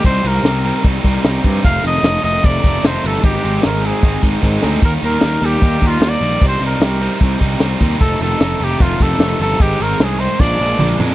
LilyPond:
<<
  \new Staff \with { instrumentName = "Trumpet" } { \time 4/4 \key c \minor \tempo 4 = 151 c''8 bes'4. r2 | f''8 ees''4 ees''8 d''4 c''8 a'8 | g'4 bes'8 aes'4 r4. | bes'8 bes'4 g'4 f'8 d''4 |
c''8 bes'8 bes'4 r2 | a'8 a'4 g'8 f'8 a'4 a'8 | g'8 bes'8 aes'8 c''8 d''4. r8 | }
  \new Staff \with { instrumentName = "Overdriven electric guitar" } { \clef bass \time 4/4 \key c \minor <c g c' ees'>8 <c g c' ees'>8 <c g c' ees'>8 <c g c' ees'>8 <c g c' ees'>8 <c g c' ees'>8 <c g c' ees'>8 <c g c' ees'>8 | <f, c ees a ees'>8 <f, c ees a ees'>8 <f, c ees a ees'>8 <f, c ees a ees'>8 <f, c ees a ees'>8 <f, c ees a ees'>8 <f, c ees a ees'>8 <f, c ees a ees'>8 | <aes, ees aes c' ees'>8 <aes, ees aes c' ees'>8 <aes, ees aes c' ees'>8 <aes, ees aes c' ees'>8 <aes, ees aes c' ees'>8 <aes, ees aes c' ees'>8 <aes, ees aes c' ees'>8 <aes, ees aes c' ees'>8 | <ees g bes ees'>8 <ees g bes ees'>8 <ees g bes ees'>8 <ees g bes ees'>8 <ees g bes ees'>8 <ees g bes ees'>8 <ees g bes ees'>8 <ees g bes ees'>8 |
<c g c' ees'>8 <c g c' ees'>8 <c g c' ees'>8 <c g c' ees'>8 <c g c' ees'>8 <c g c' ees'>8 <c g c' ees'>8 <c g c' ees'>8 | <f, c ees a ees'>8 <f, c ees a ees'>8 <f, c ees a ees'>8 <f, c ees a ees'>8 <f, c ees a ees'>8 <f, c ees a ees'>8 <f, c ees a ees'>8 <f, c ees a ees'>8 | <aes, ees aes c' ees'>8 <aes, ees aes c' ees'>8 <aes, ees aes c' ees'>8 <aes, ees aes c' ees'>8 <bes, f aes d'>8 <bes, f aes d'>8 <bes, f aes d'>8 <bes, f aes d'>8 | }
  \new Staff \with { instrumentName = "Picked electric bass" } { \clef bass \time 4/4 \key c \minor c,8 c,8 c,4 c,8 c,8 c,8 g,8 | f,,8 f,,8 f,,8 f,,8 f,,8 f,,8 f,,8 g,,8 | aes,,8 aes,,8 aes,,4 aes,,8 aes,,8 aes,,8 d,8 | ees,8 ees,8 ees,8 ees,8 ees,8 ees,8 ees,8 bes,,8 |
c,8 c,8 c,4 c,8 c,8 c,8 ees,8 | f,,8 f,,8 f,,8 f,,8 f,,8 f,,8 f,,8 g,,8 | aes,,8 aes,,8 c,4 bes,,8 bes,,8 bes,,8 f,8 | }
  \new DrumStaff \with { instrumentName = "Drums" } \drummode { \time 4/4 <hh bd>8 hh8 <hh sn>8 hh8 <hh bd>16 sn16 <hh bd>8 <hh sn>8 <hh bd>8 | <hh bd>8 hh8 <hh sn>8 hh8 <hh bd>8 <hh bd>8 <hh sn>8 hh8 | <hh bd>8 hh8 <hh sn>8 hh8 <hh bd>8 <hh bd>8 bd8 sn8 | <hh bd>8 hh8 <hh sn>8 hh8 <hh bd>8 <hh bd>8 <hh sn>8 hh8 |
<hh bd>8 hh8 <hh sn>8 hh8 <hh bd>8 <hh bd>8 <hh sn>8 <hh bd>8 | <hh bd>8 hh8 <hh sn>8 hh16 sn16 <hh bd>16 sn16 <hh bd>8 <hh sn>8 hh8 | <hh bd>8 hh8 <hh sn>8 hh8 <bd sn>4 toml8 tomfh8 | }
>>